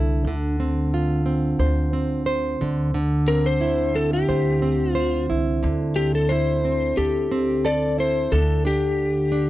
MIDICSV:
0, 0, Header, 1, 4, 480
1, 0, Start_track
1, 0, Key_signature, -1, "minor"
1, 0, Tempo, 671892
1, 183, Time_signature, 4, 2, 24, 8
1, 6785, End_track
2, 0, Start_track
2, 0, Title_t, "Electric slide guitar"
2, 0, Program_c, 0, 29
2, 2342, Note_on_c, 0, 70, 85
2, 2472, Note_on_c, 0, 72, 94
2, 2479, Note_off_c, 0, 70, 0
2, 2826, Note_on_c, 0, 69, 75
2, 2832, Note_off_c, 0, 72, 0
2, 2950, Note_off_c, 0, 69, 0
2, 2953, Note_on_c, 0, 67, 67
2, 3503, Note_off_c, 0, 67, 0
2, 3503, Note_on_c, 0, 65, 67
2, 3754, Note_off_c, 0, 65, 0
2, 4257, Note_on_c, 0, 67, 67
2, 4382, Note_off_c, 0, 67, 0
2, 4393, Note_on_c, 0, 69, 66
2, 4494, Note_on_c, 0, 72, 71
2, 4506, Note_off_c, 0, 69, 0
2, 4978, Note_off_c, 0, 72, 0
2, 4982, Note_on_c, 0, 67, 80
2, 5470, Note_on_c, 0, 74, 80
2, 5477, Note_off_c, 0, 67, 0
2, 5690, Note_off_c, 0, 74, 0
2, 5716, Note_on_c, 0, 72, 72
2, 5944, Note_on_c, 0, 69, 83
2, 5956, Note_off_c, 0, 72, 0
2, 6188, Note_off_c, 0, 69, 0
2, 6191, Note_on_c, 0, 67, 76
2, 6785, Note_off_c, 0, 67, 0
2, 6785, End_track
3, 0, Start_track
3, 0, Title_t, "Nylon-string guitar"
3, 0, Program_c, 1, 24
3, 0, Note_on_c, 1, 50, 69
3, 0, Note_on_c, 1, 62, 52
3, 0, Note_on_c, 1, 64, 50
3, 0, Note_on_c, 1, 69, 62
3, 196, Note_off_c, 1, 50, 0
3, 196, Note_on_c, 1, 50, 72
3, 238, Note_off_c, 1, 64, 0
3, 239, Note_off_c, 1, 69, 0
3, 424, Note_off_c, 1, 62, 0
3, 427, Note_on_c, 1, 60, 54
3, 671, Note_on_c, 1, 65, 57
3, 896, Note_off_c, 1, 60, 0
3, 898, Note_on_c, 1, 60, 52
3, 1141, Note_on_c, 1, 72, 50
3, 1377, Note_off_c, 1, 60, 0
3, 1380, Note_on_c, 1, 60, 54
3, 1613, Note_off_c, 1, 72, 0
3, 1616, Note_on_c, 1, 72, 59
3, 1857, Note_off_c, 1, 50, 0
3, 1866, Note_on_c, 1, 50, 70
3, 1920, Note_off_c, 1, 65, 0
3, 2094, Note_off_c, 1, 50, 0
3, 2103, Note_on_c, 1, 50, 75
3, 2124, Note_off_c, 1, 60, 0
3, 2124, Note_off_c, 1, 72, 0
3, 2346, Note_on_c, 1, 60, 57
3, 2578, Note_on_c, 1, 64, 58
3, 2817, Note_off_c, 1, 60, 0
3, 2820, Note_on_c, 1, 60, 51
3, 3062, Note_on_c, 1, 72, 60
3, 3298, Note_off_c, 1, 60, 0
3, 3301, Note_on_c, 1, 60, 56
3, 3533, Note_off_c, 1, 72, 0
3, 3536, Note_on_c, 1, 72, 64
3, 3781, Note_off_c, 1, 64, 0
3, 3784, Note_on_c, 1, 64, 50
3, 4011, Note_off_c, 1, 50, 0
3, 4019, Note_on_c, 1, 50, 69
3, 4263, Note_off_c, 1, 60, 0
3, 4265, Note_on_c, 1, 60, 54
3, 4508, Note_off_c, 1, 64, 0
3, 4511, Note_on_c, 1, 64, 55
3, 4740, Note_off_c, 1, 60, 0
3, 4749, Note_on_c, 1, 60, 50
3, 4984, Note_off_c, 1, 72, 0
3, 4987, Note_on_c, 1, 69, 51
3, 5217, Note_off_c, 1, 60, 0
3, 5226, Note_on_c, 1, 60, 55
3, 5461, Note_off_c, 1, 69, 0
3, 5464, Note_on_c, 1, 69, 56
3, 5701, Note_off_c, 1, 64, 0
3, 5704, Note_on_c, 1, 64, 50
3, 5939, Note_off_c, 1, 50, 0
3, 5942, Note_on_c, 1, 50, 68
3, 5997, Note_off_c, 1, 60, 0
3, 6178, Note_on_c, 1, 62, 52
3, 6200, Note_off_c, 1, 64, 0
3, 6654, Note_off_c, 1, 62, 0
3, 6657, Note_on_c, 1, 62, 53
3, 6785, Note_off_c, 1, 50, 0
3, 6785, Note_off_c, 1, 62, 0
3, 6785, Note_off_c, 1, 69, 0
3, 6785, End_track
4, 0, Start_track
4, 0, Title_t, "Upright bass"
4, 0, Program_c, 2, 32
4, 0, Note_on_c, 2, 36, 70
4, 162, Note_off_c, 2, 36, 0
4, 175, Note_on_c, 2, 38, 84
4, 1111, Note_off_c, 2, 38, 0
4, 1137, Note_on_c, 2, 38, 89
4, 1832, Note_off_c, 2, 38, 0
4, 1863, Note_on_c, 2, 38, 82
4, 3035, Note_off_c, 2, 38, 0
4, 3060, Note_on_c, 2, 38, 84
4, 3753, Note_off_c, 2, 38, 0
4, 3786, Note_on_c, 2, 36, 73
4, 4006, Note_off_c, 2, 36, 0
4, 4026, Note_on_c, 2, 38, 92
4, 4956, Note_off_c, 2, 38, 0
4, 4983, Note_on_c, 2, 38, 73
4, 5914, Note_off_c, 2, 38, 0
4, 5947, Note_on_c, 2, 38, 94
4, 6785, Note_off_c, 2, 38, 0
4, 6785, End_track
0, 0, End_of_file